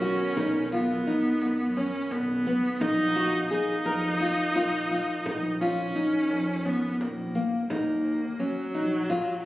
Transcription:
0.00 0.21 B1 medium
0.00 7.66 D#3 medium
0.00 2.65 B3 medium
0.00 0.72 C#4 medium
0.00 0.27 F#4 medium
0.00 2.65 A#4 medium
0.37 1.18 B1 loud
0.37 0.62 D#4 medium
0.37 frame drum medium
0.72 1.78 B3 medium
0.72 0.97 F4 medium
1.07 1.58 D#4 medium
1.41 1.96 F#2 medium
1.41 frame drum soft
1.77 2.27 C#4 medium
1.77 2.13 C#4 medium
2.11 2.66 B1 medium
2.11 2.80 B3 medium
2.11 frame drum soft
2.46 2.72 B3 medium
2.81 3.63 A#1 medium
2.81 3.47 D#4 loud
2.81 3.06 D#4 medium
2.81 7.66 A#4 medium
2.81 5.24 F5 medium
2.81 frame drum medium
3.16 3.41 F#4 medium
3.51 5.57 D#4 loud
3.51 3.76 G#4 medium
3.86 4.40 F2 medium
3.86 4.11 A#4 medium
3.86 frame drum soft
4.20 4.46 F4 medium
4.56 5.10 A#1 medium
4.56 4.81 F4 medium
4.56 frame drum medium
4.91 5.16 F4 medium
5.25 6.07 A#1 loud
5.25 5.51 D#4 medium
5.25 7.68 D#4 medium
5.25 frame drum medium
5.61 6.67 C#4 medium
5.61 5.86 F4 medium
5.95 6.46 D#4 medium
5.95 frame drum soft
6.31 6.85 F2 medium
6.31 frame drum soft
6.65 7.01 B3 medium
6.65 7.16 C#4 medium
7.00 7.55 A#1 medium
7.00 7.70 A#3 medium
7.00 frame drum medium
7.35 7.60 A#3 medium
7.35 frame drum soft
7.70 8.52 D#2 medium
7.70 8.41 A#3 medium
7.70 8.21 D#4 medium
7.70 frame drum medium
8.06 frame drum soft
8.39 9.45 F#3 medium
8.39 8.65 C#4 medium
8.75 9.29 A#1 medium
8.75 9.00 D#4 medium
9.10 9.35 F4 medium
9.10 frame drum medium

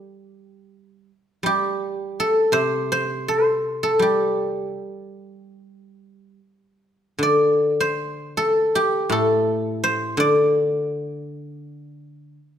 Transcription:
0.00 1.09 G3 soft
0.00 1.32 G4 medium
0.00 0.80 A4 medium
0.00 0.24 C5 medium
1.43 3.63 G3 medium
1.43 3.81 G4 medium
2.20 3.83 A4 medium
2.52 4.76 C3 medium
2.52 2.91 C5 medium
2.92 3.28 C5 medium
3.28 5.26 C5 medium
3.83 6.02 A4 medium
3.99 6.38 G3 medium
3.99 6.38 G4 medium
7.19 9.47 D3 soft
7.23 9.07 D5 medium
7.80 9.79 C5 medium
8.37 9.12 A4 medium
8.75 11.11 G4 medium
9.10 10.19 A2 medium
9.10 11.31 A4 medium
9.84 11.82 C5 medium
10.17 12.38 D3 medium
10.17 12.04 D5 medium

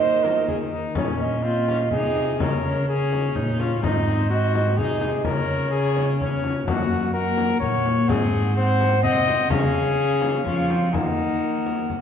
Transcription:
0.00 0.74 D#3 medium
0.00 0.74 A#3 medium
0.00 0.25 C5 medium
0.00 0.47 D#5 medium
0.23 0.47 A#4 medium
0.23 frame drum medium
0.48 0.59 G#4 medium
0.48 frame drum soft
0.72 0.97 D#4 medium
0.95 1.93 A#2 medium
0.95 1.46 A#3 soft
0.95 1.45 C#4 medium
0.95 1.19 C#5 medium
0.95 frame drum medium
1.21 2.37 D#5 medium
1.43 1.68 C4 medium
1.43 1.91 F4 medium
1.68 1.76 C#4 medium
1.68 frame drum soft
1.91 2.41 C3 medium
1.91 2.38 D#4 medium
1.91 2.42 G#4 medium
1.91 frame drum soft
2.16 frame drum soft
2.39 3.35 C#3 medium
2.39 2.86 C#4 soft
2.39 2.88 A#4 medium
2.39 2.63 C#5 medium
2.39 frame drum medium
2.64 3.81 C#5 medium
2.87 3.37 C#4 medium
2.87 3.35 G#4 medium
3.12 frame drum soft
3.35 3.82 A#2 medium
3.35 3.62 D#4 medium
3.35 frame drum soft
3.58 3.84 C#4 medium
3.58 3.81 F4 medium
3.58 frame drum soft
3.82 4.80 G#2 medium
3.82 4.05 C4 medium
3.82 4.29 D#4 medium
3.82 4.29 D#5 medium
3.82 frame drum medium
4.06 4.76 C4 medium
4.30 4.79 F#4 medium
4.30 4.54 D#5 medium
4.55 5.27 D#5 medium
4.55 frame drum medium
4.78 5.26 C3 medium
4.78 5.00 D#4 medium
4.78 5.23 G#4 medium
4.78 frame drum soft
5.01 5.09 D#4 medium
5.01 frame drum soft
5.24 6.66 C#3 medium
5.24 6.17 C#4 medium
5.24 5.70 A#4 medium
5.24 5.32 D#5 medium
5.24 frame drum medium
5.31 5.73 C#5 medium
5.71 6.18 G#4 medium
5.71 6.19 C#5 medium
5.97 frame drum soft
6.18 6.65 C#4 medium
6.18 6.67 C#5 medium
6.18 frame drum soft
6.44 frame drum soft
6.66 7.57 F#2 medium
6.66 7.12 A#3 medium
6.66 7.10 F#4 medium
6.66 7.11 F#5 medium
6.66 frame drum medium
7.13 7.61 A#3 medium
7.13 7.59 A#4 medium
7.13 7.60 F#5 medium
7.38 frame drum medium
7.60 8.10 A#2 medium
7.60 8.10 A#3 medium
7.60 8.10 C#5 medium
7.60 7.87 F#5 medium
7.60 frame drum medium
7.86 frame drum soft
8.08 9.05 G#2 medium
8.08 8.55 C4 medium
8.08 8.56 G#4 medium
8.08 8.55 F#5 medium
8.08 frame drum medium
8.56 9.02 C4 medium
8.56 9.02 C5 medium
8.56 9.02 F#5 medium
8.81 frame drum soft
9.03 9.49 C3 medium
9.03 9.52 C4 medium
9.03 9.50 D#5 loud
9.03 9.52 F#5 medium
9.03 frame drum soft
9.27 frame drum medium
9.50 10.44 C#3 medium
9.50 10.46 C#4 medium
9.50 10.44 G#4 medium
9.50 10.46 F5 medium
9.50 frame drum medium
10.22 frame drum medium
10.44 10.95 F3 medium
10.44 10.72 C#4 medium
10.44 10.91 F4 medium
10.44 10.95 F5 medium
10.44 frame drum soft
10.70 10.95 C4 medium
10.70 frame drum soft
10.92 12.01 D#3 medium
10.92 12.01 A#3 medium
10.92 12.01 D#4 medium
10.92 10.98 G#5 soft
10.92 frame drum medium
10.97 12.01 F#5 soft
11.66 frame drum soft
11.90 frame drum soft

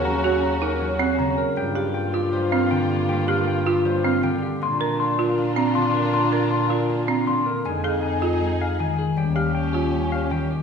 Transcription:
0.00 1.46 D#2 medium
0.00 1.18 C#3 medium
0.00 1.30 A#3 medium
0.00 1.34 C#4 medium
0.00 1.34 F#4 medium
0.00 0.11 A#4 medium
0.05 0.80 F#3 medium
0.05 0.24 A#5 medium
0.24 0.49 F#4 medium
0.24 0.43 F#5 medium
0.43 0.68 A#5 medium
0.62 0.87 D#4 medium
0.62 0.87 A#4 medium
0.80 1.59 F#3 medium
0.80 1.06 C#5 medium
0.99 1.25 C4 medium
0.99 1.18 F#5 medium
1.19 1.59 C#3 medium
1.19 1.44 A#5 medium
1.38 1.63 A#4 medium
1.56 4.49 G2 medium
1.56 2.32 G3 medium
1.56 4.38 A#3 medium
1.56 4.38 F4 medium
1.56 1.82 G5 medium
1.75 2.01 G4 medium
1.75 2.01 F5 medium
1.94 2.20 G5 medium
2.14 2.39 F4 medium
2.14 2.39 G4 medium
2.33 3.08 G3 medium
2.33 2.58 C5 medium
2.52 2.77 C4 medium
2.52 2.71 F5 medium
2.71 4.22 D3 medium
2.71 2.96 G5 medium
2.91 3.15 G4 medium
3.09 3.84 G3 medium
3.09 3.28 G5 medium
3.28 3.53 G4 medium
3.28 3.47 F5 medium
3.48 3.72 G5 medium
3.66 3.91 F4 medium
3.66 3.91 G4 medium
3.85 4.62 G3 medium
3.85 4.10 C5 medium
4.04 4.29 C4 medium
4.04 4.23 F5 medium
4.23 4.62 D3 medium
4.23 4.48 G5 medium
4.42 4.67 G4 medium
4.60 7.53 A#2 medium
4.60 5.37 A#3 medium
4.60 7.42 D4 medium
4.60 7.42 F4 medium
4.60 4.80 C6 medium
4.80 5.05 A#4 medium
4.80 5.00 A#5 medium
5.00 5.24 C6 medium
5.19 5.43 F4 medium
5.19 5.43 A#4 medium
5.38 6.12 A#3 medium
5.56 5.81 C4 medium
5.56 5.75 A#5 medium
5.75 7.26 D3 medium
5.75 6.00 C6 medium
5.94 6.19 A#4 medium
6.13 6.88 A#3 medium
6.13 6.32 C6 medium
6.32 6.57 A#4 medium
6.32 6.51 A#5 medium
6.51 6.76 C6 medium
6.70 6.95 F4 medium
6.70 6.95 A#4 medium
6.90 7.67 A#3 medium
7.08 7.33 C4 medium
7.08 7.27 A#5 medium
7.27 7.66 D3 medium
7.27 7.52 C6 medium
7.46 7.71 A#4 medium
7.64 9.05 F2 medium
7.64 8.40 G#3 medium
7.64 8.93 D#4 medium
7.64 8.94 D#4 medium
7.64 8.94 G#4 medium
7.64 7.83 G#5 medium
7.84 8.09 G#4 medium
7.84 8.03 F5 medium
8.03 8.28 G#5 medium
8.22 8.47 F4 medium
8.22 8.47 G#4 medium
8.41 9.18 G#3 soft
8.61 8.80 F5 soft
8.79 9.18 D#3 medium
8.79 9.04 G#5 medium
8.99 9.23 G#4 medium
9.16 10.57 D#2 medium
9.16 9.92 G3 medium
9.16 10.46 C#4 medium
9.16 10.46 G4 medium
9.16 9.35 G5 medium
9.36 9.60 G4 soft
9.36 9.54 F5 medium
9.55 9.79 G5 soft
9.73 9.99 F4 soft
9.73 9.98 G4 medium
9.93 10.63 G3 soft
10.12 10.31 F5 soft
10.31 10.63 D#3 medium
10.31 10.56 G5 medium
10.51 10.63 G4 soft

